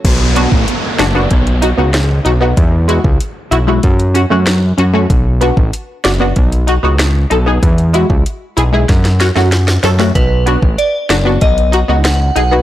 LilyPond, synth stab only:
\new Staff \with { instrumentName = "Synth stab" } { \time 4/4 \key fis \minor \tempo 4 = 95 r8 <b d' fis'>16 r8. <d' fis'>16 <b d' fis'>16 r8 <dis' fis'>16 <b dis' fis'>16 r8 <dis' fis'>16 <b dis' fis'>16 | r8 <gis e' fis'>16 r8. <e' fis'>16 <gis e' fis'>16 r8 <cis' fis'>16 <a cis' fis'>16 r8 <cis' fis'>16 <a cis' fis'>16 | r8 <b d' fis'>16 r8. <d' fis'>16 <b d' fis'>16 r8 <dis' fis'>16 <b dis' fis'>16 r8 <dis' a'>16 <b dis' gis'>16 | r8 <gis e' fis'>16 r8. <e' gis'>16 <gis e' gis'>16 r8 <cis' fis'>16 <a cis' fis'>16 r8 <cis' a'>16 <a cis' fis'>16 |
r8 <b d' fis'>16 r8. <d' fis'>16 <b d' fis'>16 r8 <dis' fis'>16 <b dis' fis'>16 r8 <dis' gis'>16 <b dis' fis'>16 | }